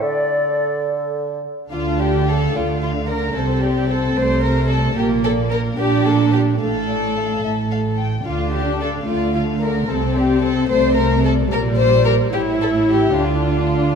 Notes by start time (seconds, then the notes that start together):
0.02 D3 A4 D5
1.72 D2 D3 D4 F4 F5
1.99 G4 D5
2.27 A4 F5
2.54 D2 D3 A3 F4 D5
2.82 F4 F5
3.09 A#4 D5
3.36 C2 C3 C4 A4 C5
3.63 G4 D5
3.90 A4 C5
4.16 C2 C3 A3 C5 D5
4.43 A#4 C5
4.70 A4 D5
4.97 A#1 A#2 A#3 G4 A#4
5.24 A4 D5
5.52 A#4
5.78 A#1 A#2 D4 G4 D5
6.06 A4 A#4
6.34 G4 D5
6.61 A1 A2 A3 A4 F5
6.89 D5
7.17 F5
7.43 A1 A2 E5
7.72 F5
8.00 G5
8.26 D2 D3 D4 F4 F5
8.54 G4 D5
8.81 A4 F5
9.09 D2 D3 A3 F4 D5
9.36 F4 F5
9.62 A#4 D5
9.90 C2 C3 C4 A4 C5
10.17 G4 D5
10.44 A4 C5
10.71 C2 C3 A3 C5 D5
10.98 A#4 C5
11.25 A4 D5
11.52 A#1 A#2 G3 A#4 D5
11.78 C5
12.06 A#4
12.34 A1 A2 E4 G4 C#5
12.62 A4
12.90 G4
13.18 D2 D3 D4 F4 D5